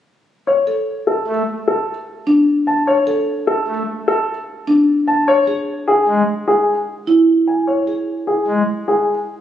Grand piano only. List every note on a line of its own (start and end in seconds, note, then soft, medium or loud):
0.47 0.73 C#5 medium
1.07 1.33 A4 medium
1.68 1.93 A4 medium
2.67 2.93 A5 soft
2.87 3.13 C#5 medium
3.47 3.73 A4 medium
4.08 4.34 A4 medium
5.08 5.33 A5 medium
5.28 5.54 C#5 medium
5.88 6.13 G#4 medium
6.48 6.73 G#4 medium
7.48 7.73 G#5 soft
7.67 7.93 C#5 medium
8.27 8.53 G#4 medium
8.88 9.14 G#4 medium